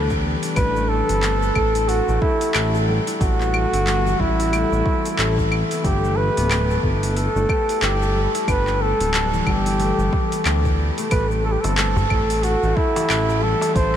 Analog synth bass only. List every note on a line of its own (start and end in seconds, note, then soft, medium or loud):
0.00 0.36 D2 medium
0.57 1.02 A1 loud
1.10 1.51 G1 medium
1.56 2.01 A1 medium
2.09 2.19 A1 loud
2.55 3.00 A1 medium
3.21 3.66 A1 loud
3.73 4.15 G1 medium
4.20 4.65 A1 medium
4.72 4.82 A1 loud
5.18 5.64 A1 loud
5.84 6.30 G1 loud
6.37 6.78 D1 medium
6.83 7.29 G1 medium
7.36 7.46 G1 loud
7.82 8.27 G1 loud
8.48 8.93 G1 loud
9.00 9.42 D1 medium
9.47 9.92 G1 medium
9.99 10.09 G1 loud
10.45 10.91 D2 medium
11.12 11.57 A1 loud
11.64 12.06 G1 medium
12.11 12.56 A1 loud
12.63 12.74 A1 loud
13.10 13.55 A1 loud
13.76 13.97 A1 medium